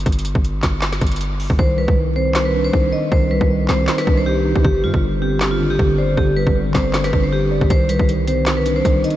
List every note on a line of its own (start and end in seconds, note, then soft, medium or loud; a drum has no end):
0.06 0.34 G1 loud
0.06 kick loud
0.06 closed hi-hat medium
0.12 closed hi-hat medium
0.19 closed hi-hat medium
0.25 closed hi-hat medium
0.35 0.56 G1 loud
0.35 kick loud
0.45 closed hi-hat medium
0.54 0.63 G#1 loud
0.63 1.00 G1 loud
0.63 kick medium
0.63 snare loud
0.63 clap medium
0.63 closed hi-hat medium
0.82 snare loud
0.82 clap loud
0.82 closed hi-hat medium
0.93 snare medium
1.01 1.48 G1 loud
1.01 kick loud
1.01 closed hi-hat medium
1.07 closed hi-hat medium
1.12 closed hi-hat medium
1.16 closed hi-hat medium
1.21 closed hi-hat medium
1.40 open hi-hat medium
1.50 1.58 G1 loud
1.50 kick medium
1.59 1.87 C2 loud
1.59 1.96 D#3 medium
1.59 1.77 C5 medium
1.59 kick loud
1.78 2.73 G3 medium
1.78 1.96 B4 medium
1.88 2.70 C2 loud
1.88 kick medium
1.97 2.34 D#3 medium
2.16 3.12 C4 medium
2.16 2.44 C5 medium
2.35 2.72 D#3 medium
2.35 snare loud
2.35 clap medium
2.45 2.63 B4 medium
2.54 3.50 D4 medium
2.65 2.91 C5 medium
2.73 2.92 C2 loud
2.73 3.11 D#3 medium
2.73 kick medium
2.93 3.88 D#4 medium
2.93 3.11 D#5 medium
3.12 3.40 C2 loud
3.12 3.49 D#3 medium
3.12 3.30 C5 medium
3.12 kick loud
3.31 4.26 G3 medium
3.31 3.49 B4 medium
3.41 3.68 C2 loud
3.41 kick medium
3.50 3.87 D#3 medium
3.68 3.87 C2 loud
3.68 4.65 C4 medium
3.68 3.96 C5 medium
3.68 snare loud
3.68 clap medium
3.88 4.25 D#3 medium
3.88 snare loud
3.88 clap loud
3.98 4.16 B4 medium
3.98 snare medium
4.07 4.54 C2 loud
4.07 4.65 D4 medium
4.07 kick loud
4.18 4.26 C5 medium
4.26 4.65 D#3 medium
4.26 4.62 G4 medium
4.45 4.65 D#4 medium
4.56 4.64 C2 loud
4.56 kick medium
4.64 4.85 G1 loud
4.64 5.02 D3 medium
4.64 4.82 G4 medium
4.64 kick loud
4.83 4.93 G2 medium
4.83 5.79 G3 medium
4.83 5.02 F4 medium
4.94 5.62 G1 loud
4.94 kick loud
5.03 5.40 D3 medium
5.22 6.17 C4 medium
5.22 5.49 G4 medium
5.41 5.78 D3 loud
5.41 snare loud
5.41 clap loud
5.51 5.69 F4 medium
5.60 5.78 G#1 loud
5.60 6.56 D4 medium
5.70 5.97 G4 medium
5.79 6.16 G1 loud
5.79 6.17 D3 medium
5.79 kick loud
5.98 6.16 C5 medium
5.98 6.94 D5 medium
6.17 6.46 G1 loud
6.17 6.54 D3 loud
6.17 6.35 G4 medium
6.17 kick loud
6.37 7.32 G3 medium
6.37 6.55 B4 medium
6.47 6.67 G1 loud
6.47 kick medium
6.56 6.93 D3 medium
6.66 6.74 G#1 loud
6.74 7.11 G1 loud
6.74 7.70 C4 medium
6.74 7.02 C5 medium
6.74 kick medium
6.74 snare loud
6.74 clap medium
6.94 7.31 D3 medium
6.94 snare loud
6.94 clap medium
7.04 7.22 B4 medium
7.04 snare medium
7.13 7.59 G1 loud
7.13 7.70 D4 medium
7.13 kick loud
7.23 7.32 C5 medium
7.32 7.70 D3 medium
7.32 7.68 G4 medium
7.51 7.70 D5 medium
7.61 7.70 G1 loud
7.61 kick medium
7.70 7.98 C2 loud
7.70 8.07 D#3 loud
7.70 7.88 C5 medium
7.70 kick loud
7.70 closed hi-hat medium
7.89 8.85 G3 medium
7.89 8.07 B4 medium
7.89 closed hi-hat loud
7.99 8.82 C2 loud
7.99 kick loud
8.08 8.46 D#3 medium
8.08 closed hi-hat medium
8.28 9.16 C4 medium
8.28 8.55 C5 medium
8.28 closed hi-hat medium
8.46 8.83 D#3 medium
8.46 snare loud
8.46 clap medium
8.46 closed hi-hat medium
8.57 8.75 B4 medium
8.66 9.16 D4 medium
8.66 closed hi-hat medium
8.76 9.02 C5 medium
8.85 9.03 C2 loud
8.85 9.16 D#3 medium
8.85 kick loud
8.85 closed hi-hat medium
9.04 9.16 D#4 medium
9.04 9.16 D#5 medium
9.04 closed hi-hat medium
9.10 closed hi-hat medium